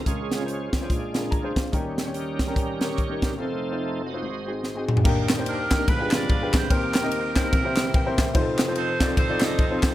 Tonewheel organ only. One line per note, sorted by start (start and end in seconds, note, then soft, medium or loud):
0.07 0.70 C#3 soft
0.07 0.70 G#3 soft
0.07 0.70 C#4 medium
0.07 0.74 F4 medium
0.07 0.69 G#4 medium
0.74 0.89 D4 soft
0.74 1.53 F4 medium
0.74 1.53 G#4 medium
0.90 1.53 A#2 soft
0.90 1.53 G#3 soft
0.90 1.53 D4 medium
1.72 3.35 D#3 soft
1.72 3.35 G3 soft
1.72 2.13 C#4 medium
2.14 2.55 C#4 soft
2.14 2.55 G4 medium
2.14 2.55 A#4 medium
2.56 3.35 C#4 medium
2.56 2.80 G4 medium
2.56 2.80 A#4 medium
2.81 3.35 G4 medium
2.81 3.22 A#4 medium
2.81 3.24 C#5 medium
3.23 3.40 A#4 medium
3.39 4.02 F3 medium
3.39 4.02 A3 soft
3.39 4.03 D#4 medium
3.39 4.19 A4 medium
3.39 4.02 C5 medium
4.06 4.23 F#4 medium
4.06 4.85 C5 medium
4.06 4.85 D#5 medium
4.22 4.52 G#3 soft
4.22 4.53 C4 soft
4.22 4.53 F#4 medium
5.05 5.87 D#3 medium
5.05 5.87 A#3 medium
5.05 5.87 D4 medium
5.05 7.50 G5 medium
5.88 6.70 F3 medium
5.88 6.69 G#3 medium
5.88 6.69 B3 medium
6.71 7.52 D#3 medium
6.71 8.34 A#3 medium
6.71 9.94 C4 medium
7.52 8.34 E3 medium
7.52 8.34 G4 medium
8.36 9.94 F3 medium
8.36 9.94 D#4 medium
8.36 9.94 A4 medium